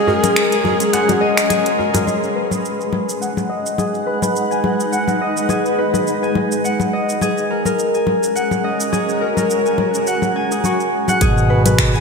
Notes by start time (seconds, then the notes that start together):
Already playing: F#3 G#3 C#4 G#4 A#4 D#5 F#5 G#5
0.07 A#4, djembe bass
0.23 A#4, closed hi-hat, low conga, shaker
0.36 finger snap, closed hi-hat, shaker
0.52 G#5, closed hi-hat, shaker
0.64 djembe tone, djembe bass, low conga
0.80 closed hi-hat, shaker
0.93 F#5, closed hi-hat, djembe slap, shaker
1.09 closed hi-hat, djembe tone, low conga, shaker
1.21 D#5, djembe tone
1.37 finger snap, closed hi-hat, shaker
1.49 G#4, closed hi-hat, low conga, shaker
1.66 closed hi-hat, shaker
1.78 A#4, djembe tone
1.94 A#4, closed hi-hat, djembe slap, djembe tone, djembe bass, low conga, shaker
2.07 G#4, low conga, shaker
2.24 shaker
2.35 B4
2.39 F#5
2.51 B4, low conga, shaker
2.65 shaker
2.76 D#4 G#5
2.81 shaker
2.93 low conga
3.09 shaker
3.21 F#5, shaker
3.37 low conga, shaker
3.49 D#5
3.66 shaker
3.72 B4
3.78 G#4, low conga, shaker
3.94 shaker
4.06 B4
4.22 B4, low conga, shaker
4.36 shaker
4.51 G#5, shaker
4.64 low conga
4.80 shaker
4.92 F#5, shaker
5.08 low conga, shaker
5.21 D#5
5.37 shaker
5.49 G#4, low conga, shaker
5.66 shaker
5.78 B4
5.94 B4, low conga, shaker
6.07 shaker
6.23 G#5, shaker
6.35 low conga
6.52 shaker
6.64 G#3 F#5, shaker
6.80 low conga, shaker
6.93 D#5
7.09 shaker
7.21 G#4, low conga, shaker
7.27 C#4
7.38 shaker
7.50 A#4
7.65 A#4, low conga, shaker
7.79 shaker
7.91 F#4 G#5, shaker
8.07 low conga
8.23 shaker
8.35 F#5, shaker
8.51 low conga, shaker
8.64 D#5
8.80 shaker
8.92 G#4, low conga, shaker
9.09 shaker
9.21 A#4
9.37 A#4, low conga, shaker
9.50 shaker
9.66 G#5, shaker
9.78 low conga
9.94 shaker
10.07 F#5, shaker
10.22 low conga, shaker
10.36 G#5
10.51 G#4, shaker
10.64 F#4, low conga, shaker
10.80 shaker
11.08 F#5, low conga, shaker
11.21 G#1 B2 G#4, kick, closed hi-hat, low conga, shaker
11.38 shaker
11.50 B4
11.66 B4, closed hi-hat, low conga, shaker
11.79 finger snap, kick, closed hi-hat, shaker
11.94 G#5, shaker